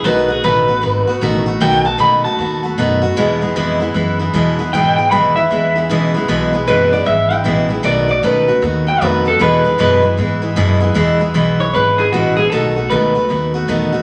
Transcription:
X:1
M:4/4
L:1/8
Q:"Swing" 1/4=154
K:E
V:1 name="Clean electric guitar"
B G B4 z2 | =g a b a4- a | z8 | =g g b e4- e- |
e z B =d e =g3 | =d d B2 z =g B A | B2 B z4 z | z3 c B G F G |
A2 B3 z3 |]
V:2 name="Steel-string acoustic guitar"
[B,,D,A,B,F] [A,B,F] [B,,D,A,B,F] [A,B,F] [D,A,B,F] [A,B,F] [B,,D,A,B,F] [A,B,F] | [B,,D,A,B,F] [A,B,F] [B,,D,A,B,F] [A,B,F] [D,A,B,F] [A,B,F] [B,,D,A,B,F] [A,B,F] | [E,,B,,E,G,B,E] [E,G,B,E] [E,,B,,E,G,B,E] [E,G,B,E] [E,G,B,E] [E,G,B,E] [E,,B,,E,G,B,E] [E,G,B,E] | [E,,B,,E,G,B,E] [E,G,B,E] [E,,B,,E,G,B,E] [E,G,B,E] [E,G,B,E] [E,G,B,E] [E,,B,,E,G,B,E] [E,G,B,E] |
[E,,B,,E,G,B,E] [E,G,B,E] [E,,B,,E,G,B,E] [E,G,B,E] [E,G,B,E] [E,G,B,E] [E,,B,,E,G,B,E] [E,G,B,E] | [B,,D,A,B,F] [A,B,F] [B,,D,A,B,F] [A,B,F] [D,A,B,F] [A,B,F] [B,,D,A,B,F] [A,B,F] | [E,,B,,E,G,B,E] [E,G,B,E] [E,,B,,E,G,B,E] [E,G,B,E] [E,G,B,E] [E,G,B,E] [E,,B,,E,G,B,E] [E,G,B,E] | [E,,B,,E,G,B,E] [E,G,B,E] [E,,B,,E,G,B,E] [E,G,B,E] [E,G,B,E] [E,G,B,E] [E,,B,,E,G,B,E] [E,G,B,E] |
[B,,D,A,B,F] [A,B,F] [B,,D,A,B,F] [A,B,F] [D,A,B,F] [A,B,F] [B,,D,A,B,F] [A,B,F] |]
V:3 name="Upright bass" clef=bass
B,,,2 A,,,2 G,,, z A,,,2 | B,,,2 C,,2 D,,2 F,,2 | E,,2 =F,,2 ^F,,2 E,,2 | G,,2 D,,2 E,,2 C,,2 |
B,,,2 F,,,2 G,,,2 A,,,2 | B,,,2 C,,2 D,,2 =F,,2 | E,,2 F,,2 G,,2 F,,2 | E,,2 B,,,2 G,,,2 A,,,2 |
B,,,2 C,,2 D,,2 E,,2 |]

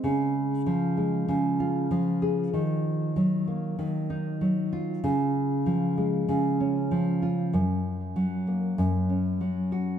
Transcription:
X:1
M:4/4
L:1/8
Q:"Swing 16ths" 1/4=96
K:Db
V:1 name="Nylon-string guitar" clef=bass
D,2 F, A, D, F F, A | E,2 G, B, E, E G, F | D,2 F, A, D, D F, F | G,,2 G, B, G,, D G, G |]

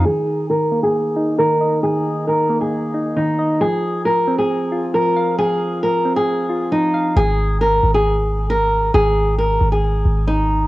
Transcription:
X:1
M:4/4
L:1/16
Q:1/4=135
K:Ab
V:1 name="Nylon-string guitar"
A4 B3 A4- A B4 | A4 B3 A4- A E4 | A4 B3 A4- A B4 | A4 B3 A4- A E4 |
A4 B3 A4- A B4 | A4 B3 A4- A E4 |]
V:2 name="Synth keys" clef=bass
E,4 E,2 B,4 E2 E,2 e2 | E,4 E,2 B,4 E2 E,2 e2 | F,4 F,2 C4 F2 F,2 f2 | F,4 F,2 C4 F2 F,2 f2 |
z16 | z16 |]
V:3 name="808-style bass" clef=bass
z16 | z16 | z16 | z16 |
A,,,6 A,,,8- A,,,2 | A,,,6 A,,,4 A,,,6 |]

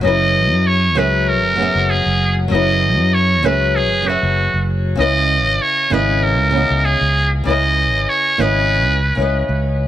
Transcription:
X:1
M:4/4
L:1/16
Q:"Swing 16ths" 1/4=97
K:F#mix
V:1 name="Muted trumpet"
d4 c2 B2 A4 G3 z | d4 c2 B2 G2 F4 z2 | d4 c2 B2 A4 G3 z | d4 c2 B8 z2 |]
V:2 name="Nylon-string guitar"
[F,CEGB]6 [F,CGBe]4 [F,B,CGe]6 | [F,CEGB]6 [F,CGBe]4 [F,CGBe]6 | [C,CEBd]6 [C,CEBd]4 [C,B,CEd]6 | [C,CEBd]6 [C,CEBd]4 z [C,CEBd]4- [C,CEBd] |]
V:3 name="Fretless electric bass" clef=bass
F,,,3 F,,3 C,,3 F,,,2 F,,,2 F,,,3 | F,,,3 F,,3 C,,3 F,,,2 F,,,2 F,,,3 | C,,3 G,,, z2 G,,,3 C,,2 C,,2 C,,3 | C,,3 G,,, z2 G,,,3 C,,2 C,,2 C,,3 |]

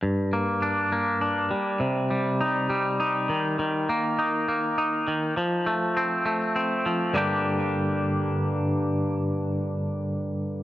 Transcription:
X:1
M:3/4
L:1/8
Q:1/4=101
K:Gm
V:1 name="Clean electric guitar"
G,, B, D B, D G, | C, G, E G, E E, | E, B, E B, E E, | F, A, C A, C F, |
[G,,D,G,B,DG]6- | [G,,D,G,B,DG]6 |]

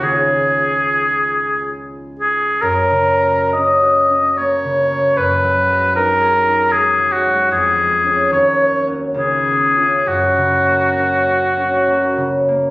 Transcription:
X:1
M:3/4
L:1/8
Q:1/4=70
K:F#
V:1 name="Oboe"
G4 z G | A2 d2 c2 | B2 A2 G F | G2 c z G2 |
F4- F z |]
V:2 name="Harp"
[C,,CEG]6 | (3F,, C, A, (3C F C (3A, C, A, | (3F,, F, G, (3D G D (3G, F, G, | (3E,, G, [CG] (3D,, A, [CF] (3C,, B, [CE] |
(3F,, C, A, (3C F C (3A, C, A, |]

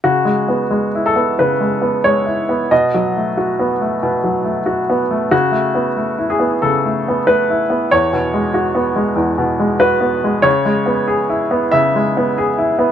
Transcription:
X:1
M:4/4
L:1/8
Q:1/4=93
K:C#m
V:1 name="Upright piano"
F3 A B2 c2 | d6- d z | F3 G A2 B2 | c6 B2 |
c4 e4 |]
V:2 name="Upright piano"
(3C, G, B, (3G, E B, (3C, G, B, (3G, E B, | (3B,, F, A, (3F B, A, (3B,, F, A, (3F B, A, | (3C, A, B, (3A, E B, (3C, A, B, (3A, E B, | (3E,, B,, G, (3F B, G, (3E,, B,, G, (3F B, G, |
(3C, G, B, (3G E B, (3C, G, B, (3G E B, |]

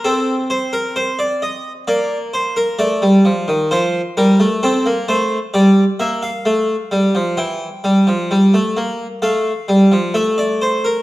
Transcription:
X:1
M:4/4
L:1/16
Q:1/4=65
K:Fmix
V:1 name="Harpsichord"
A2 c B c d e2 d2 c B d4 | c2 B2 A2 c2 d2 =e f4- f | g8 f4 =e d c B |]
V:2 name="Harpsichord" clef=bass
C8 B,4 A, G, F, E, | F,2 G, A, C B, A,2 G,2 B,2 A,2 G, F, | =E,2 G, F, G, A, B,2 A,2 G, F, A,4 |]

